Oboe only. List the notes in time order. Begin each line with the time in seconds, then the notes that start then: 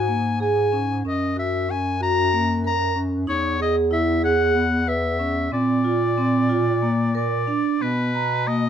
Already playing: G#5
0.42 G#5
1.08 D#5
1.39 E5
1.71 G#5
2.03 A#5
2.66 A#5
3.29 C#5
3.62 D#5
3.93 E5
4.25 F#5
4.88 E5
5.53 D5
7.16 D5
7.82 B4
8.47 D#5